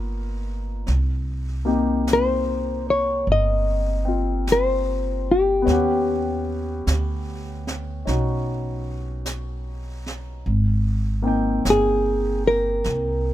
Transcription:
0.00 0.83 G1 medium
0.00 0.86 A#3 soft
0.00 0.87 B3 soft
0.00 0.87 D#4 soft
0.00 0.87 F4 medium
0.87 3.24 C2 medium
0.87 brush sweep soft
0.87 snare soft
1.65 5.66 C3 soft
1.65 5.66 A#3 soft
1.65 5.67 D#4 soft
1.65 5.67 G4 soft
2.07 brush sweep soft
2.07 snare soft
2.07 hi-hat pedal soft
2.13 2.90 C5 medium
2.90 3.31 C#5 medium
3.27 5.63 G1 medium
3.27 brush sweep soft
3.32 4.52 D#5 medium
4.05 5.66 C4 soft
4.05 5.68 F4 soft
4.47 brush sweep soft
4.47 snare soft
4.47 hi-hat pedal soft
4.52 5.31 C5 medium
5.31 7.64 G4 medium
5.62 10.42 B3 soft
5.62 8.04 C#4 soft
5.67 6.82 D#2 medium
5.67 10.46 F#5 soft
5.67 brush sweep soft
5.67 snare soft
5.73 10.48 G4 medium
6.87 8.02 D2 medium
6.87 brush sweep soft
6.87 snare soft
6.87 hi-hat pedal soft
7.67 snare soft
8.05 10.41 B1 medium
8.05 10.45 C#4 soft
8.05 10.45 D#4 soft
8.05 10.46 F#4 soft
8.05 brush sweep soft
8.05 snare soft
9.26 brush sweep soft
9.26 snare soft
9.26 hi-hat pedal soft
10.06 snare soft
10.46 11.61 G#1 medium
10.46 brush sweep soft
11.22 13.34 A#3 soft
11.22 13.34 C4 soft
11.22 13.34 D#4 soft
11.27 13.34 G5 medium
11.65 12.80 G1 medium
11.65 brush sweep soft
11.65 snare soft
11.65 hi-hat pedal soft
11.70 12.47 G#4 medium
12.47 13.34 A#4 medium
12.84 13.34 C2 medium
12.84 brush sweep soft
12.84 snare soft

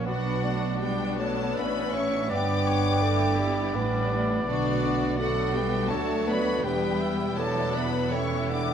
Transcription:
0.06 1.57 B1 medium
0.06 1.57 B2 medium
0.06 0.76 F#3 medium
0.06 0.45 B3 medium
0.06 0.44 B3 soft
0.06 0.81 D4 medium
0.06 0.79 D4 soft
0.06 2.27 F#4 medium
0.06 0.77 F#4 medium
0.06 0.77 B4 medium
0.06 1.28 D5 medium
0.06 0.77 F#5 medium
0.44 0.81 A3 medium
0.44 1.31 D4 medium
0.80 1.18 G3 medium
0.80 2.29 B3 medium
0.80 1.56 D4 medium
0.80 2.29 D4 soft
0.80 1.22 G4 medium
0.80 1.18 B4 medium
0.80 1.18 G5 medium
1.18 1.56 A3 medium
1.18 1.61 A4 medium
1.18 1.57 C#5 medium
1.18 1.56 A5 medium
1.55 2.30 A1 medium
1.55 2.29 A2 medium
1.55 1.93 B3 medium
1.55 2.31 C#4 medium
1.55 1.95 D5 medium
1.55 2.31 E5 medium
1.55 1.94 B5 medium
1.60 1.95 B4 medium
1.93 2.30 C#4 medium
1.93 2.32 C#5 medium
1.93 2.31 E5 medium
1.93 2.30 C#6 medium
2.29 3.76 G1 medium
2.29 3.76 G2 medium
2.29 3.03 B3 medium
2.29 2.66 B3 medium
2.29 4.08 D4 medium
2.29 3.02 G4 medium
2.29 2.68 D5 medium
2.29 4.12 D5 medium
2.29 4.13 G5 medium
2.29 4.09 D6 medium
2.66 3.73 B3 medium
2.66 3.04 C#5 medium
3.02 3.38 A3 medium
3.02 3.75 E4 medium
3.02 3.74 G4 medium
3.02 5.16 D5 medium
3.39 3.76 G3 medium
3.74 4.48 A1 medium
3.74 4.48 A2 medium
3.74 4.48 G3 medium
3.74 4.47 B3 medium
3.74 4.47 D4 medium
3.74 4.49 E4 medium
4.47 5.88 B1 medium
4.47 5.89 B2 medium
4.47 5.15 D3 medium
4.47 5.18 A3 medium
4.47 5.21 B3 medium
4.47 5.15 D4 medium
4.47 4.84 D4 medium
4.47 5.18 D4 medium
4.47 4.82 F#4 medium
4.47 5.15 F#4 medium
4.47 5.15 D5 medium
4.83 5.19 F#4 medium
5.17 5.55 F#3 medium
5.17 5.89 A3 medium
5.17 5.90 B3 medium
5.17 6.63 D4 medium
5.17 5.55 F#4 medium
5.17 6.63 F#4 medium
5.17 5.55 A4 medium
5.17 5.89 D5 medium
5.17 5.55 F#5 medium
5.54 5.91 G3 medium
5.54 5.88 G4 medium
5.54 5.92 B4 medium
5.54 5.91 G5 medium
5.88 6.65 D2 medium
5.88 6.65 F#3 medium
5.88 6.63 A3 medium
5.88 6.28 A3 medium
5.88 6.26 A4 medium
5.88 6.66 C#5 medium
5.88 6.27 D5 medium
5.88 6.27 A5 medium
6.27 6.65 B3 medium
6.27 6.64 B4 medium
6.27 6.65 D5 medium
6.27 6.66 B5 medium
6.64 8.74 E1 medium
6.64 8.74 E2 medium
6.64 7.38 G3 medium
6.64 7.39 G3 medium
6.64 7.37 B3 medium
6.64 7.13 B3 medium
6.64 7.02 D4 medium
6.64 7.00 E4 medium
6.64 7.41 G4 medium
6.64 7.02 B4 medium
6.64 7.39 B4 medium
6.64 7.37 G5 medium
7.01 8.12 E4 medium
7.01 7.38 E5 medium
7.37 8.12 F#3 medium
7.37 7.76 A3 medium
7.37 8.09 B3 medium
7.37 8.12 D4 medium
7.37 8.11 A4 medium
7.37 7.76 A4 medium
7.37 7.75 C#5 medium
7.37 7.86 D5 medium
7.37 7.75 A5 medium
7.74 8.12 B3 medium
7.74 8.13 B4 medium
7.74 8.13 D5 medium
7.74 8.13 B5 medium
8.11 8.74 E3 medium
8.11 8.74 A3 medium
8.11 8.50 C#4 medium
8.11 8.74 E4 medium
8.11 8.74 G4 medium
8.11 8.51 C#5 medium
8.11 8.74 E5 soft
8.11 8.50 E5 medium
8.11 8.49 C#6 medium
8.49 8.74 D4 medium
8.49 8.74 D5 medium
8.49 8.74 F#5 medium
8.49 8.74 D6 medium

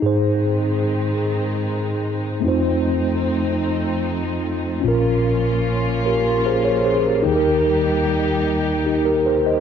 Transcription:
0.00 2.40 G#2 soft
0.00 2.41 D#3 soft
0.00 2.40 G#3 soft
0.00 2.40 C4 soft
0.00 2.38 D#4 soft
0.00 2.40 D#4 soft
0.00 2.40 G#4 soft
0.06 2.42 C5 medium
2.40 4.81 F2 soft
2.40 7.21 F3 medium
2.40 4.79 A3 soft
2.40 4.82 A3 soft
2.40 4.80 C4 soft
2.40 4.82 C4 soft
2.40 4.82 D#4 medium
2.40 4.81 D#4 soft
2.46 4.82 F4 soft
2.46 4.83 C5 soft
4.81 7.21 A#1 medium
4.81 7.21 A#2 soft
4.81 9.60 A#3 soft
4.81 7.19 C#4 soft
4.81 7.22 C#4 soft
4.81 7.22 F4 medium
4.81 7.21 F4 soft
4.88 6.04 A#4 medium
6.06 6.44 G4 soft
6.06 6.43 A#4 soft
6.46 6.65 G#4 soft
6.46 6.64 C5 soft
6.65 6.85 A#4 soft
6.65 6.84 C#5 soft
6.85 7.04 G#4 soft
6.85 7.04 C5 soft
7.06 7.25 G4 soft
7.06 7.35 A#4 soft
7.22 9.60 D#2 medium
7.22 9.60 D#3 soft
7.22 9.60 G3 medium
7.22 8.80 D#4 medium
7.22 9.60 D#4 soft
7.22 9.60 G4 medium
7.22 8.82 G4 soft
7.29 7.34 G#4 soft
7.36 8.87 A#4 medium
8.86 9.04 D#4 soft
8.86 9.04 G4 soft
9.05 9.24 G4 soft
9.05 9.24 A#4 medium
9.26 9.45 C5 soft
9.46 9.60 C5 soft
9.46 9.60 D#5 soft

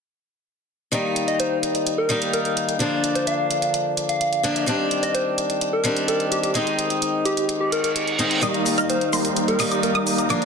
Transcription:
0.92 2.07 D#3 medium
0.92 2.07 G3 medium
0.92 2.07 A#3 medium
0.92 2.08 D#4 medium
0.92 closed hi-hat medium
1.16 closed hi-hat medium
1.28 1.37 D#5 medium
1.28 closed hi-hat soft
1.40 1.58 C5 medium
1.40 closed hi-hat medium
1.63 closed hi-hat medium
1.75 closed hi-hat soft
1.87 closed hi-hat medium
1.98 2.16 A#4 medium
2.09 2.77 D#3 medium
2.09 2.77 G3 medium
2.09 2.78 A#3 medium
2.09 2.78 D#4 medium
2.09 closed hi-hat medium
2.22 closed hi-hat soft
2.33 2.41 A#4 medium
2.33 closed hi-hat medium
2.45 2.53 A#4 medium
2.45 closed hi-hat soft
2.57 closed hi-hat medium
2.69 closed hi-hat medium
2.79 4.41 D3 medium
2.79 4.41 F3 medium
2.79 4.42 A#3 medium
2.79 4.42 D4 medium
2.79 closed hi-hat medium
3.04 closed hi-hat medium
3.15 3.25 C5 medium
3.15 closed hi-hat soft
3.27 3.74 F5 medium
3.27 closed hi-hat medium
3.51 closed hi-hat medium
3.62 closed hi-hat soft
3.74 closed hi-hat medium
3.97 closed hi-hat medium
4.09 4.72 F5 medium
4.09 closed hi-hat soft
4.21 closed hi-hat medium
4.33 closed hi-hat soft
4.43 4.64 D3 medium
4.43 4.64 F3 medium
4.43 4.64 A#3 medium
4.43 4.64 D4 loud
4.43 closed hi-hat medium
4.56 closed hi-hat soft
4.66 5.81 D#3 medium
4.66 5.82 G3 medium
4.66 5.82 C4 medium
4.66 5.83 D4 medium
4.66 closed hi-hat medium
4.91 closed hi-hat medium
5.03 5.12 D#5 medium
5.03 closed hi-hat soft
5.14 5.33 C5 medium
5.14 closed hi-hat medium
5.38 closed hi-hat medium
5.50 closed hi-hat soft
5.61 closed hi-hat medium
5.73 5.91 A#4 medium
5.84 6.52 D#3 medium
5.84 6.52 G3 medium
5.84 6.53 C4 medium
5.84 6.53 D4 medium
5.84 closed hi-hat medium
5.96 closed hi-hat soft
6.08 6.27 A#4 medium
6.08 closed hi-hat medium
6.20 closed hi-hat soft
6.32 6.39 G4 medium
6.32 closed hi-hat medium
6.43 6.51 G4 medium
6.43 closed hi-hat soft
6.54 8.16 D#3 medium
6.54 8.16 G#3 medium
6.54 8.17 C4 medium
6.54 8.17 D#4 medium
6.54 closed hi-hat medium
6.67 closed hi-hat soft
6.79 closed hi-hat medium
6.90 closed hi-hat soft
7.02 closed hi-hat medium
7.25 7.44 G4 medium
7.25 closed hi-hat medium
7.37 closed hi-hat soft
7.49 closed hi-hat medium
7.49 reverse cymbal medium
7.61 7.70 G4 medium
7.72 7.80 A#4 medium
7.72 closed hi-hat medium
7.84 7.92 A#4 medium
7.84 closed hi-hat soft
7.96 closed hi-hat medium
8.07 closed hi-hat soft
8.19 8.40 D#3 medium
8.19 8.40 G#3 medium
8.19 8.40 C4 medium
8.19 8.40 D#4 medium
8.19 closed hi-hat medium
8.31 closed hi-hat soft
8.41 9.56 D#3 medium
8.41 9.57 G3 medium
8.41 8.75 G3 medium
8.41 8.75 A#3 medium
8.41 9.57 A#3 medium
8.41 8.75 D#4 medium
8.41 9.58 D#4 medium
8.41 8.75 A#4 medium
8.41 8.75 D#5 medium
8.41 8.75 D#6 medium
8.41 closed hi-hat medium
8.41 riser medium
8.41 cabasa soft
8.54 closed hi-hat soft
8.66 open hi-hat medium
8.66 cabasa medium
8.78 8.97 G3 medium
8.78 8.97 D#4 medium
8.78 8.87 D#5 medium
8.78 8.97 F6 medium
8.78 closed hi-hat soft
8.78 cabasa soft
8.90 9.08 C5 medium
8.90 closed hi-hat medium
8.90 cabasa soft
9.01 closed hi-hat soft
9.13 9.57 G3 medium
9.13 9.57 A#3 medium
9.13 9.57 D#4 medium
9.13 9.57 A#4 medium
9.13 9.57 C5 medium
9.13 9.57 C6 medium
9.13 open hi-hat medium
9.13 cabasa medium
9.25 closed hi-hat soft
9.25 cabasa soft
9.36 closed hi-hat medium
9.36 cabasa soft
9.48 9.66 A#4 medium
9.48 closed hi-hat soft
9.59 10.27 D#3 medium
9.59 10.27 G3 medium
9.59 9.92 G3 medium
9.59 9.92 A#3 medium
9.59 10.28 A#3 medium
9.59 9.92 D#4 medium
9.59 10.28 D#4 loud
9.59 9.92 A#4 medium
9.59 9.92 D#5 medium
9.59 9.92 D#6 medium
9.59 open hi-hat medium
9.59 cabasa medium
9.72 closed hi-hat soft
9.72 cabasa soft
9.72 high woodblock medium
9.83 9.91 A#4 medium
9.83 closed hi-hat medium
9.83 cabasa soft
9.95 10.27 G3 medium
9.95 10.27 A#3 medium
9.95 10.27 D#4 medium
9.95 10.03 A#4 medium
9.95 10.27 A#4 medium
9.95 10.27 D#5 loud
9.95 10.27 D#6 loud
9.95 closed hi-hat soft
9.95 high woodblock medium
10.07 open hi-hat medium
10.07 cabasa medium
10.18 closed hi-hat medium
10.18 cabasa soft
10.18 high woodblock medium
10.29 10.45 D3 medium
10.29 10.45 F3 medium
10.29 10.45 A#3 medium
10.29 10.45 D4 medium
10.29 10.45 A#4 medium
10.29 10.45 D5 medium
10.29 10.45 D6 medium
10.29 closed hi-hat medium
10.29 cabasa soft
10.42 closed hi-hat soft

